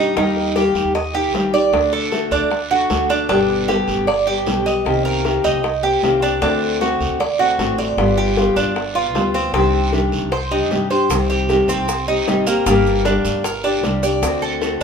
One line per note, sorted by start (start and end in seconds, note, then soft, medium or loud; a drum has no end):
0.00 0.14 G2 loud
0.00 0.15 G3 soft
0.00 0.16 D4 soft
0.00 0.16 D#4 medium
0.00 0.16 G4 soft
0.16 0.72 D#2 loud
0.16 0.54 D#3 medium
0.16 0.55 G3 medium
0.16 0.55 A#3 medium
0.16 0.55 D#4 medium
0.16 0.56 D#4 medium
0.16 0.56 G4 medium
0.16 high bongo medium
0.16 long guiro medium
0.37 high bongo soft
0.55 0.93 D#3 medium
0.55 0.94 G3 medium
0.55 0.94 A#3 medium
0.55 0.94 D#4 medium
0.55 0.94 G4 medium
0.55 high bongo medium
0.55 short guiro medium
0.75 0.84 D#2 loud
0.75 high bongo soft
0.75 short guiro medium
0.85 1.33 D#2 medium
0.95 1.14 D#5 medium
0.95 muted steel-string acoustic guitar stroke medium
0.95 high bongo medium
0.95 long guiro medium
1.14 1.33 A#3 soft
1.14 1.33 D#4 soft
1.14 1.33 G4 soft
1.14 1.52 G4 medium
1.33 1.71 A#1 loud
1.33 1.52 D#3 medium
1.33 1.53 G3 medium
1.33 1.53 A#3 medium
1.33 1.52 D#4 medium
1.33 1.51 G4 medium
1.33 high bongo soft
1.33 low bongo medium
1.33 short guiro medium
1.52 1.73 A#3 soft
1.52 1.72 D#4 soft
1.52 1.72 G4 soft
1.52 1.92 D5 medium
1.52 high bongo soft
1.52 short guiro medium
1.72 2.28 D2 loud
1.72 2.10 D3 medium
1.72 2.11 A3 medium
1.72 2.12 D4 medium
1.72 2.12 F#4 medium
1.72 high bongo medium
1.72 long guiro medium
1.93 2.31 A4 medium
1.93 high bongo soft
2.12 2.50 D3 medium
2.12 2.50 A3 medium
2.12 2.50 D4 medium
2.12 2.51 F#4 medium
2.12 high bongo medium
2.12 short guiro medium
2.31 2.41 D2 loud
2.31 2.70 D4 medium
2.31 high bongo soft
2.31 short guiro medium
2.41 2.88 D2 medium
2.51 muted steel-string acoustic guitar stroke medium
2.51 high bongo medium
2.51 long guiro medium
2.70 2.89 A3 soft
2.70 2.90 D4 soft
2.70 2.89 F#4 medium
2.70 3.09 F#4 medium
2.90 3.27 D2 medium
2.90 3.09 D3 medium
2.90 3.09 A3 medium
2.90 3.09 D4 medium
2.90 3.09 F#4 medium
2.90 high bongo soft
2.90 low bongo medium
2.90 short guiro medium
3.09 3.29 A3 soft
3.09 3.28 D4 medium
3.09 3.29 D4 soft
3.09 3.29 F#4 medium
3.09 high bongo soft
3.09 short guiro medium
3.29 3.85 G1 loud
3.29 3.67 B2 medium
3.29 3.67 D3 medium
3.29 3.68 G3 medium
3.29 3.68 B3 medium
3.29 3.67 D4 medium
3.29 3.68 G4 medium
3.29 high bongo medium
3.29 long guiro medium
3.50 high bongo soft
3.68 4.06 B2 medium
3.68 4.06 D3 medium
3.68 4.07 G3 medium
3.68 4.07 B3 medium
3.68 4.06 G4 medium
3.68 4.07 G4 medium
3.68 high bongo medium
3.68 short guiro medium
3.88 3.97 G1 medium
3.88 high bongo soft
3.88 short guiro medium
3.97 4.46 G1 medium
4.07 4.26 D5 medium
4.07 muted steel-string acoustic guitar stroke soft
4.07 high bongo medium
4.07 long guiro medium
4.26 4.46 G3 soft
4.26 4.46 B3 soft
4.26 4.45 G4 soft
4.26 4.65 G4 medium
4.46 4.83 B1 medium
4.46 4.65 B2 medium
4.46 4.65 D3 medium
4.46 4.65 G3 medium
4.46 4.65 B3 medium
4.46 4.64 G4 medium
4.46 high bongo soft
4.46 low bongo medium
4.46 short guiro medium
4.65 4.85 G3 soft
4.65 4.85 B3 soft
4.65 4.85 G4 soft
4.65 5.04 D#5 medium
4.65 high bongo soft
4.65 short guiro medium
4.85 5.41 C2 loud
4.85 5.23 C3 medium
4.85 5.23 D#3 medium
4.85 5.24 A#3 medium
4.85 5.24 C4 medium
4.85 5.24 G4 medium
4.85 high bongo medium
4.85 long guiro medium
5.05 5.43 A#4 medium
5.05 high bongo soft
5.24 5.62 C3 medium
5.24 5.62 D#3 medium
5.24 5.63 A#3 medium
5.24 5.63 C4 medium
5.24 5.63 G4 medium
5.24 high bongo medium
5.24 short guiro medium
5.44 5.53 C2 loud
5.44 5.82 D#4 medium
5.44 high bongo soft
5.44 short guiro medium
5.54 6.00 C2 medium
5.63 muted steel-string acoustic guitar stroke medium
5.63 high bongo medium
5.63 long guiro medium
5.83 6.02 A#3 soft
5.83 6.02 C4 soft
5.83 6.02 G4 medium
5.83 6.21 G4 medium
6.02 6.40 C2 medium
6.02 6.21 C3 medium
6.02 6.21 D#3 medium
6.02 6.22 A#3 medium
6.02 6.21 C4 medium
6.02 6.20 G4 medium
6.02 high bongo soft
6.02 low bongo medium
6.02 short guiro medium
6.22 6.41 A#3 soft
6.22 6.41 C4 soft
6.22 6.41 D4 medium
6.22 6.41 G4 soft
6.22 high bongo soft
6.22 short guiro medium
6.41 6.97 D2 loud
6.41 6.79 D3 medium
6.41 6.80 A3 medium
6.41 6.80 C4 medium
6.41 6.80 D4 medium
6.41 6.81 F#4 medium
6.41 high bongo medium
6.41 long guiro medium
6.62 high bongo soft
6.80 7.18 D3 medium
6.80 7.19 A3 medium
6.80 7.19 C4 medium
6.80 7.19 F#4 medium
6.80 high bongo medium
6.80 short guiro medium
7.00 7.09 D2 loud
7.00 high bongo soft
7.00 short guiro medium
7.09 7.60 D2 medium
7.20 7.39 D5 medium
7.20 muted steel-string acoustic guitar stroke medium
7.20 high bongo medium
7.20 long guiro medium
7.39 7.58 A3 soft
7.39 7.58 C4 soft
7.39 7.58 F#4 soft
7.39 7.77 F#4 medium
7.58 7.96 A1 loud
7.58 7.77 D3 medium
7.58 7.78 A3 medium
7.58 7.78 C4 medium
7.58 7.77 F#4 medium
7.58 high bongo soft
7.58 low bongo medium
7.58 short guiro medium
7.78 7.97 A3 soft
7.78 7.98 C4 soft
7.78 7.97 F#4 soft
7.78 8.16 D5 medium
7.78 high bongo soft
7.78 short guiro medium
7.97 8.53 G1 loud
7.97 8.35 G3 medium
7.97 8.36 B3 medium
7.97 8.37 F4 medium
7.97 high bongo medium
7.97 long guiro medium
8.17 8.55 G4 medium
8.17 high bongo soft
8.36 8.74 G3 medium
8.36 8.75 B3 medium
8.36 8.75 F4 medium
8.36 high bongo medium
8.36 short guiro medium
8.56 8.65 G1 medium
8.56 8.94 D4 medium
8.56 high bongo soft
8.56 short guiro medium
8.66 9.14 G1 medium
8.76 muted steel-string acoustic guitar stroke medium
8.76 high bongo medium
8.76 long guiro medium
8.95 9.14 B3 soft
8.95 9.14 F4 medium
8.95 9.33 F4 medium
9.14 9.52 D2 medium
9.14 9.34 G3 medium
9.14 9.34 B3 medium
9.14 9.33 F4 medium
9.14 high bongo soft
9.14 low bongo medium
9.14 short guiro medium
9.34 9.54 B3 soft
9.34 9.53 C4 medium
9.34 9.53 F4 soft
9.34 high bongo soft
9.34 short guiro medium
9.53 10.09 C2 loud
9.53 9.91 C3 medium
9.53 9.92 D#3 medium
9.53 9.92 G3 medium
9.53 9.92 C4 medium
9.53 9.92 D4 medium
9.53 9.93 G4 medium
9.53 high bongo medium
9.53 long guiro medium
9.73 high bongo soft
9.92 10.31 C3 medium
9.92 10.31 D#3 medium
9.92 10.31 G3 medium
9.92 10.32 D4 medium
9.92 10.32 G4 medium
9.92 high bongo medium
9.92 short guiro medium
10.12 10.21 C2 medium
10.12 high bongo soft
10.12 short guiro medium
10.21 10.70 C2 medium
10.32 10.51 C5 medium
10.32 muted steel-string acoustic guitar stroke medium
10.32 high bongo medium
10.32 long guiro medium
10.51 10.70 G3 soft
10.51 10.71 D4 soft
10.51 10.89 D#4 medium
10.51 10.70 G4 medium
10.70 11.08 G2 medium
10.70 10.89 C3 medium
10.70 10.90 D#3 medium
10.70 10.90 G3 medium
10.70 10.90 D4 medium
10.70 10.89 G4 medium
10.70 high bongo soft
10.70 low bongo medium
10.70 short guiro medium
10.90 11.09 G3 soft
10.90 11.10 D4 soft
10.90 11.09 G4 soft
10.90 11.28 C5 medium
10.90 high bongo soft
10.90 short guiro medium
11.09 11.66 C2 loud
11.09 11.47 C3 medium
11.09 11.48 D#3 medium
11.09 11.48 G3 medium
11.09 11.49 C4 medium
11.09 11.49 G4 medium
11.09 high bongo medium
11.09 long guiro medium
11.09 maracas medium
11.30 11.68 G4 medium
11.30 high bongo soft
11.30 maracas soft
11.49 11.87 C3 medium
11.49 11.87 D#3 medium
11.49 11.87 G3 medium
11.49 11.88 C4 medium
11.49 11.88 G4 medium
11.49 high bongo medium
11.49 short guiro medium
11.49 maracas soft
11.68 11.77 C2 medium
11.68 12.07 C4 medium
11.68 high bongo soft
11.68 short guiro medium
11.68 maracas medium
11.78 12.27 C2 medium
11.88 muted steel-string acoustic guitar stroke medium
11.88 high bongo medium
11.88 long guiro medium
11.88 maracas medium
12.07 12.27 G3 soft
12.07 12.27 C4 soft
12.07 12.46 D#4 medium
12.07 12.26 G4 soft
12.07 maracas soft
12.27 12.64 G#1 loud
12.27 12.46 C3 medium
12.27 12.46 D#3 medium
12.27 12.46 G3 medium
12.27 12.46 C4 medium
12.27 12.45 G4 medium
12.27 high bongo soft
12.27 low bongo medium
12.27 short guiro medium
12.27 maracas soft
12.46 12.65 G3 soft
12.46 12.65 A#3 medium
12.46 12.66 C4 soft
12.46 12.65 G4 soft
12.46 high bongo soft
12.46 short guiro medium
12.46 maracas medium
12.66 13.22 G1 loud
12.66 13.03 D3 medium
12.66 13.04 G3 medium
12.66 13.04 A#3 medium
12.66 13.05 A#3 medium
12.66 13.05 D4 medium
12.66 13.05 G4 medium
12.66 high bongo medium
12.66 long guiro medium
12.66 maracas medium
12.86 high bongo soft
12.86 maracas soft
13.05 13.43 D3 medium
13.05 13.43 G3 medium
13.05 13.44 A#3 medium
13.05 13.43 D4 medium
13.05 13.44 D4 medium
13.05 13.44 G4 medium
13.05 high bongo medium
13.05 short guiro medium
13.05 maracas soft
13.25 13.34 G1 medium
13.25 high bongo soft
13.25 short guiro medium
13.25 maracas medium
13.34 13.83 G1 medium
13.44 13.63 A#4 medium
13.44 muted steel-string acoustic guitar stroke medium
13.44 high bongo medium
13.44 long guiro medium
13.44 maracas medium
13.64 13.83 A#3 soft
13.64 14.02 D4 medium
13.64 13.83 D4 soft
13.64 13.82 G4 medium
13.64 maracas soft
13.83 14.20 C2 medium
13.83 14.02 D3 medium
13.83 14.02 G3 medium
13.83 14.03 A#3 medium
13.83 14.03 D4 medium
13.83 14.02 G4 medium
13.83 high bongo soft
13.83 low bongo medium
13.83 short guiro medium
13.83 maracas soft
14.03 14.22 A#3 soft
14.03 14.22 D4 soft
14.03 14.22 G4 soft
14.03 14.41 D5 medium
14.03 high bongo soft
14.03 short guiro medium
14.03 maracas medium
14.22 14.78 D2 loud
14.22 14.60 D3 medium
14.22 14.60 A3 medium
14.22 14.61 C4 medium
14.22 14.61 F#4 medium
14.22 high bongo medium
14.22 long guiro medium
14.22 maracas medium
14.42 14.80 A4 medium
14.42 high bongo soft
14.42 maracas soft
14.61 14.83 D3 medium
14.61 14.83 A3 medium
14.61 14.83 C4 medium
14.61 14.83 F#4 medium
14.61 high bongo medium
14.61 short guiro medium
14.61 maracas soft